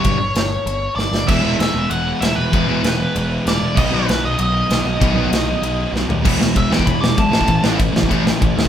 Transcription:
<<
  \new Staff \with { instrumentName = "Lead electric guitar" } { \time 4/4 \key b \mixolydian \tempo 4 = 193 cis''2. d''4 | e''4 e''4 fis''4 e''8 b'8~ | b'2. d''4 | dis''8 b'4 dis''8 dis''2~ |
dis''2. r4 | \key e \major r4 e''8 g''8 b''8 d'''8 a''4~ | a''4 r2. | }
  \new Staff \with { instrumentName = "Distorted electric guitar" } { \clef bass \time 4/4 \key b \mixolydian r1 | <e gis b e'>4 <e gis b e'>8 <e gis b e'>8 <e gis b e'>4 <e gis b e'>8 <e gis b e'>8 | <e gis b e'>4 <e gis b e'>8 <e gis b e'>8 <e gis b e'>4 <e gis b e'>8 <e gis b e'>8 | <b, dis fis b dis'>4 <b, dis fis b dis'>8 <b, dis fis b dis'>8 <b, dis fis b dis'>4 <b, dis fis b dis'>8 <b, dis fis b dis'>8 |
<b, dis fis b dis'>4 <b, dis fis b dis'>8 <b, dis fis b dis'>8 <b, dis fis b dis'>4 <b, dis fis b dis'>8 <b, dis fis b dis'>8 | \key e \major <e gis b e'>8 <e gis b e'>8 <e gis b e'>8 <e gis b e'>8 <e gis b e'>8 <e gis b e'>8 <e gis b e'>8 <a, e a cis' e'>8 | <a, e a cis' e'>8 <a, e a cis' e'>8 <a, e a cis' e'>8 <a, e a cis' e'>8 <a, e a cis' e'>8 <a, e a cis' e'>8 <a, e a cis' e'>8 <a, e a cis' e'>8 | }
  \new Staff \with { instrumentName = "Distorted electric guitar" } { \clef bass \time 4/4 \key b \mixolydian <g, d g b d'>8 r2. r8 | <e gis b e'>8 <e gis b e'>8 r2. | <e gis b e'>8 <e gis b e'>8 r2. | <b, dis fis b dis'>8 <b, dis fis b dis'>8 r2. |
<b, dis fis b dis'>8 <b, dis fis b dis'>8 r2. | \key e \major <e gis b>8 <e gis>8 <e gis>8 <e gis b>8 <e gis>8 <e gis>8 <e gis>8 <a, e a>8 | <a, e>8 <a, e a>8 <a, e>8 <a, e>8 <a, e a>8 <a, e>8 <a, e>8 <a, e>8 | }
  \new Staff \with { instrumentName = "Distorted electric guitar" } { \clef bass \time 4/4 \key b \mixolydian <g, d g>8 r2. r8 | <e, b, e>8 <e, b, e>8 r2. | <e, b, e>8 <e, b, e>8 r2. | <b, fis b>8 <b, fis b>8 r2. |
<b, fis b>8 <b, fis b>8 r2. | \key e \major <e, b, e>8 <e, b,>8 <e, b,>8 <e, b, e>8 <e, b,>8 <e, b,>8 <e, b,>8 <a, e a>8 | <a, e>8 <a, e a>8 <a, e>8 <a, e>8 <a, e a>8 <a, e>8 <a, e>8 <a, e>8 | }
  \new Staff \with { instrumentName = "Picked electric bass" } { \clef bass \time 4/4 \key b \mixolydian g,,8 g,,8 g,,4 g,,4 g,,8 g,,8 | e,,8 e,,8 e,,8 e,,8 e,,4 e,,8 e,,8 | e,,8 e,,8 e,,4 e,,4 e,,8 e,,8 | b,,8 b,,8 b,,8 b,,8 b,,4 b,,8 b,,8 |
b,,8 b,,8 b,,4 b,,4 b,,8 dis,8 | \key e \major e,,8 e,,8 e,,8 e,,8 e,,8 e,,8 b,,8 a,,8 | a,,8 a,,8 a,,8 a,,8 a,,4 a,,8 cis,8 | }
  \new DrumStaff \with { instrumentName = "Drums" } \drummode { \time 4/4 <bd cymr>4 <cymr sn>4 cymr4 sn8 sn8 | <cymc bd cymr>4 <cymr sn>4 cymr4 <cymr sn>4 | <bd cymr>4 <cymr sn>4 cymr4 <cymr sn>4 | <cymc bd>4 <cymr sn>4 cymr4 <cymr sn>4 |
<bd cymr>4 <cymr sn>4 cymr4 sn8 tomfh8 | <cymc bd>8 sn8 <bd cymr>8 sn16 bd16 <bd cymr>8 sn8 <bd cymr>8 sn16 bd16 | <bd cymr>8 sn8 <bd cymr>8 sn16 bd16 <bd cymr>8 sn8 <bd cymr>8 sn8 | }
>>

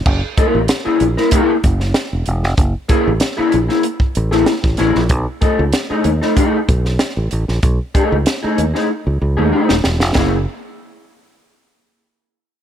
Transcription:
<<
  \new Staff \with { instrumentName = "Clean electric guitar" } { \time 4/4 \key b \major \tempo 4 = 95 r8 <ais e' ais'>16 r8 <ais e' gis'>16 r16 <ais e' ais'>16 <ais e' gis'>16 r4. r16 | r8 <ais e' gis'>16 r8 <ais e' gis'>16 r16 <ais e' gis'>16 r8. <ais e' gis'>16 r8 <ais e' gis'>16 r16 | r8 <a dis' a'>16 r8 <a dis' gis'>16 r16 <a dis' a'>16 <a dis' gis'>16 r4. r16 | r8 <a dis' gis'>16 r8 <a dis' gis'>16 r16 <a dis' gis'>16 r8. <a dis' gis'>16 <a dis' gis'>16 r8. |
<ais e' gis'>16 r2. r8. | }
  \new Staff \with { instrumentName = "Fingered electric bass" } { \clef bass \time 4/4 \key b \major fis,,16 r8 a,,16 r8 ais,,16 r8. fis,,8 r16 e,,16 e,,16 eis,,16 | fis,,16 r8 a,,16 r8 ais,,16 r8. a,,8 r16 a,,16 a,,16 ais,,16 | b,,16 r8 cis,16 r8 dis,16 r8. b,,8 r16 a,,16 a,,16 ais,,16 | b,,16 r8 cis,16 r8 dis,16 r8 cis,16 cis,16 dis,16 r16 dis,,16 e,,16 eis,,16 |
fis,,8 r2. r8 | }
  \new DrumStaff \with { instrumentName = "Drums" } \drummode { \time 4/4 <cymc bd>8 <hh bd>8 <hh sn>8 hh16 sn16 <hh bd>8 <hh bd>16 sn16 <hh sn>8 hh16 sn16 | <hh bd>8 <hh bd>8 <hh sn>8 hh16 sn16 hh16 bd16 hh16 sn16 <hh sn>16 <bd sn>16 <hh sn>16 sn16 | <hh bd>8 <hh bd>8 <hh sn>8 hh16 sn16 <hh bd>8 <hh bd>16 sn16 <hh sn>8 hh16 sn16 | <hh bd>8 <hh bd>8 <hh sn>8 hh16 sn16 r4 r16 sn16 sn16 sn16 |
<bd sn>4 r4 r4 r4 | }
>>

